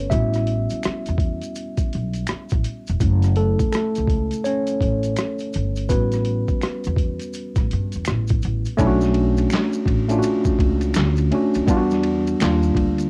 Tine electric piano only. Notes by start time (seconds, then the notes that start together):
Already playing: B3 C#4 B4 C#5
0.10 G3 B3 C#4 E4 F#4 E5
3.01 A3 C#4 E4
3.37 A3 A4
3.72 A3 A4
4.44 C#4 C#5
5.89 G3 B3 C#4 F#4 B4
8.77 A3 C#4 D4 E4
8.87 F#4
10.09 A3 C#4 D4 F4
10.19 F#4
11.31 A3 C#4 D4 F#4
11.67 G3 B3 D4 F4
11.77 F#4
12.40 F#3 A#3 D4 F4
12.46 G3